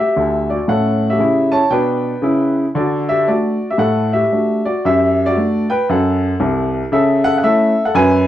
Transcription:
Already playing: E5
0.00 G4
0.16 D2 D3
0.50 F#4 D5
0.68 A2 C#4 A4 F#5
1.10 G4 E5
1.18 C#3 E4
1.52 C#5 A5
1.70 B2 D4 B4 G5
2.22 C#3 E4
2.75 D3 F#4 D5
3.09 G4 E5
3.27 A3 D4 F#4 D5
3.71 G4 E5
3.78 A2 A4 F#5
4.13 G4 E5
4.32 A3 D4 F#4
4.65 F#4 D5
4.85 F#2 G4 E5
5.26 F#4 D5
5.36 A3 D4
5.70 B4 G5
5.89 F#2 A4 F#5
6.40 C2 C3
6.92 C#3 A4 E5
7.24 A4 F#5
7.38 F#5
7.43 A3 C#4 E4 A4 E5
7.85 A4 F#5
7.95 F#2 B4 G#5

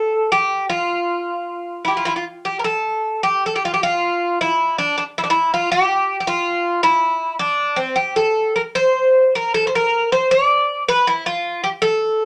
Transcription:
Already playing: A4
0.32 G4
0.69 F4
1.85 E4 G4
1.97 F4
2.05 E4 F4
2.16 F4
2.45 G4
2.59 A#4
2.64 A4
3.23 G4
3.46 A4
3.55 G4
3.65 F4
3.74 G4
3.83 F4
4.41 E4
4.78 D4
4.98 D4
5.18 E4
5.24 D4
5.30 E4
5.54 F4
5.72 G4
6.20 G4
6.27 F4
6.83 E4
7.39 D4
7.76 C4
7.96 G4
8.16 A4
8.56 A#4
8.75 C5
9.35 A#4
9.54 A4
9.67 C5
9.75 A#4
10.12 C5
10.31 D5
10.89 B4
11.07 E4
11.26 F4
11.64 G4
11.82 A4

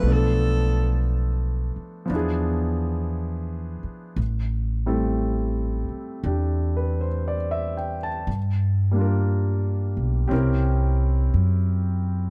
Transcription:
Already playing: B4
0.00 B1 F3 A3
0.05 B3 D4
0.10 A4
1.76 muted upright bass stroke
2.06 F3 B3
2.10 E2 D4 E4
2.16 G#4
3.83 muted upright bass stroke
4.16 A1
4.86 G3 A3 C4 E4 A4
5.89 muted upright bass stroke
6.24 E2 D4 G4
6.77 B4
7.01 C5
7.28 D5
7.51 E5
7.77 G5
8.03 A5
8.27 G2
8.91 G3 A#3
8.96 D4 F4
9.01 A#4
9.97 B1
10.28 C2 C4 C#4 G4
10.32 E4 A#4
11.34 F#2

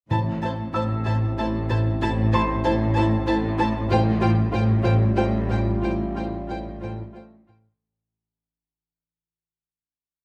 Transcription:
0.10 A1 A2 C4 E4 C5 A5
0.42 A2 E4 C5 A5
0.73 A1 A2 E4 C5 A5 E6
1.05 A2 E4 C5 A5
1.38 A1 A2 A3 E4 C5 A5
1.69 A2 E4 C5 A5
2.01 A1 A2 E4 C5 A5
2.33 A2 E4 C5 A5 C6
2.64 A1 A2 E4 C5 A5
2.68 A2
2.95 A2 E4 C5 A5
3.27 A1 A2 A3 E4 C5 A5
3.58 E4 C5 A5
3.62 A2
3.90 A1 A2 G3 F4 C5 G5
4.21 A2 F4 C5 G5
4.52 A1 A2 F4 C5 G5
4.83 A2 F4 C5 G5
5.16 A1 A2 A3 F4 C5 G5
5.48 A2 F4 C5 G5
5.81 A1 A2 F4 C5 G5
6.15 A2 F4 C5 G5
6.47 A1 A2 F4 C5 G5
6.80 A2 F4 C5 G5
7.13 A1 A2 A3 F4 C5 G5
7.47 A2 F4 C5 G5

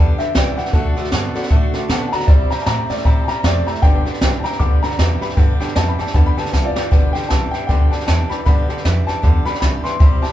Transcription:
Already playing: E2 G2 D3 G3 B3 D4 G4 A5
0.18 G2 D3 G3 B3 D4 G4 B4 D5 E5 G5, snare
0.33 C2 G2 E3 G3 B3 D4 G4 B4 D5 G5, snare, hi-hat pedal
0.57 G2 E3 G3 B3 D4 G4 B4 D5 F#5 G5, muted upright bass stroke, snare
0.66 snare
0.73 D2 D3 A3 D4 F#4 A4 D5 F#5, kick, snare
0.95 D3 A3 D4 F#4 A4 D5 F#5, snare
1.04 snare
1.11 G2 D3 A3 B3 D4 F#4 A4 D5 A5, snare, hi-hat pedal
1.34 D3 B3 D4 F#4 A4 D5 F#5, muted upright bass stroke, snare
1.43 snare
1.49 A2 D3 A3 D4 F#4 A4 D5 F#5, kick, snare
1.73 D3 A3 D4 F#4 A4 D5 F#5, muted upright bass stroke, snare
1.88 B2 D3 A3 B3 D4 F#4 A4 D5 F#5, snare, hi-hat pedal
2.08 A4 D5 A5, muted upright bass stroke
2.12 D3 B3 D4 F#4 F#5 A#5, snare
2.20 snare
2.27 C2 C3 G3 C4 E4 G4 C5 D5 E5 G5, kick, snare
2.50 C3 G3 C4 E4 G4 C5 E5 G5 A#5, snare
2.59 A5, snare
2.66 A2 C3 G3 A3 C4 E4 G4 C5 E5 G5 A#5, snare, hi-hat pedal
2.89 C3 A3 C4 E4 G4 C5 D5 E5 G5, muted upright bass stroke, snare
2.97 snare
3.04 A2 C3 G3 C4 E4 G4 C5 E5 G5 A#5, kick, snare
3.24 G4 C5 E5 A5
3.28 C3 G3 C4 E4 G5 A#5, muted upright bass stroke, snare
3.43 F2 C3 G3 A3 C4 E4 G4 C5 D5 E5 G5, snare, hi-hat pedal
3.66 C3 A3 C4 E4 G4 C5 E5 G5 A#5, muted upright bass stroke, snare
3.75 snare
3.82 G1 G2 D3 G3 B3 D4 G4 B4 D5 G5, kick, snare
4.05 G2 D3 G3 B3 D4 G4 B4 D5 G5, muted upright bass stroke, snare
4.14 snare
4.21 C2 G2 E3 G3 B3 D4 G4 B4 D5 G5, snare, hi-hat pedal
4.39 A5
4.44 G2 E3 G3 B3 D4 G4 B4 D5 G5 A#5, muted upright bass stroke, snare
4.52 snare
4.60 D2 G2 D3 G3 B3 D4 G4 B4 D5 G5 D6, kick, snare
4.82 G2 D3 G3 B3 D4 G4 B4 D5 G5 A#5, snare
4.91 snare
4.98 E2 G2 E3 G3 B3 D4 G4 B4 D5 G5, snare, hi-hat pedal
5.21 G2 E3 G3 B3 D4 G4 B4 D5 G5 B5, muted upright bass stroke, snare
5.29 snare
5.37 G2 D3 G3 B3 D4 G4 B4 D5 G5, kick, snare
5.60 G2 D3 G3 B3 D4 G4 B4 D5 G5, muted upright bass stroke, snare
5.68 snare
5.75 F2 G2 E3 G3 B3 D4 G4 B4 D5 G5 A5, snare, hi-hat pedal
5.88 B5
5.98 G2 E3 G3 B3 D4 G4 B4 D5 G5 A5, muted upright bass stroke, snare
6.07 snare
6.14 E2 G2 D3 G3 B3 D4 G4 B4 D5 G5 A5, kick, snare
6.26 B5
6.37 G2 D3 G3 B3 D4 G4 B4 D5 G5 A5, muted upright bass stroke, snare
6.45 snare
6.52 C2 G2 E3 G3 B3 D4 G4 B4 D5 G5 A5, snare, hi-hat pedal
6.64 F4 D5
6.75 G2 E3 G3 B3 D4 G4 B4 D5 G5, muted upright bass stroke, snare
6.91 G1 G2 D3 G3 B3 D4 G4 B4 D5 G5, kick, snare
7.13 G2 D3 B3 D4 G4 B4 D5 G5, muted upright bass stroke, snare
7.17 G3
7.23 snare
7.28 C2 G2 E3 G3 B3 D4 B4 D5 G5 A5, snare, hi-hat pedal
7.33 G4
7.51 G2 E3 B3 D4 G4 B4 D5 G5, snare
7.55 G3
7.67 D2 G2 D3 G3 B3 D4 G4 B4 D5 G5, kick, snare
7.91 G2 D3 G3 B3 D4 G4 B4 D5 G5 A5, snare
8.00 snare
8.06 E2 G2 E3 G3 B3 D4 G4 B4 D5 G5 A5, snare, hi-hat pedal
8.29 G2 E3 G3 B3 D4 G4 B4 D5 G5 B5, muted upright bass stroke, snare
8.45 G2 D3 G3 B3 D4 G4 B4 D5 G5 B5, kick, snare
8.68 G2 D3 G3 B3 D4 G4 B4 D5 G5, muted upright bass stroke, snare
8.77 snare
8.84 F2 G2 E3 G3 B3 D4 G4 B4 D5 G5, snare, hi-hat pedal
9.07 G2 E3 G3 B3 D4 G4 B4 D5 G5 A5, muted upright bass stroke, snare
9.22 E2 G2 D3 G3 B3 D4 G4 B4 D5 A5, kick, snare
9.45 G2 D3 G3 B3 D4 G4 B4 D5 G5 B5, muted upright bass stroke, snare
9.54 snare
9.60 C2 G2 E3 G3 B3 D4 G4 B4 D5 G5 B5, snare, hi-hat pedal
9.83 G2 E3 G3 B3 D4 G4 B4 D5 G5 C6, snare
9.99 C2 C3 G3 C4 E4 G4 C5 E5 G5, kick, snare
10.22 C3 G3 C4 E4 G4 C5 E5 G5 A5, snare

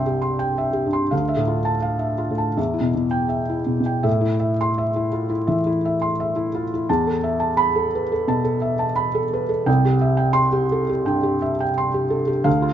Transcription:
Already playing: C2 G2 G4 E5 G5 C6
0.06 G4
0.22 C6
0.39 G5
0.58 E5
0.73 G4
0.86 G2
0.93 C6
1.11 D2 F5
1.28 E5
1.36 A2
1.47 F4
1.65 A5
1.82 F5
1.99 E5
2.18 F4
2.30 A2
2.38 A5
2.57 E2 E5
2.74 E4
2.81 B2
2.95 B2
3.11 G5
3.29 E5
3.49 E4
3.66 B2
3.80 B2
3.86 G5
4.03 A2 E5
4.21 E4
4.40 E5
4.61 C6
4.78 E5
4.96 E4
5.12 F4
5.30 E4
5.47 E3 E5
5.67 E4
5.85 E5
6.02 C6
6.20 E5
6.36 E4
6.54 F4
6.74 E4
6.89 E2 A5
7.07 A4
7.24 E5
7.40 A5
7.57 B5
7.76 A4
7.95 B4
8.12 A4
8.28 B2 A5
8.44 A4
8.62 E5
8.79 A5
8.96 B5
9.15 A4
9.33 B4
9.49 A4
9.66 C2 G5
9.85 G4
10.01 E5
10.17 G5
10.33 C6
10.52 G4
10.72 A4
10.89 G4
11.05 G2 G5
11.23 G4
11.42 E5
11.60 G5
11.78 C6
11.94 G4
12.10 A4
12.27 G4
12.44 D2 F5
12.62 F4

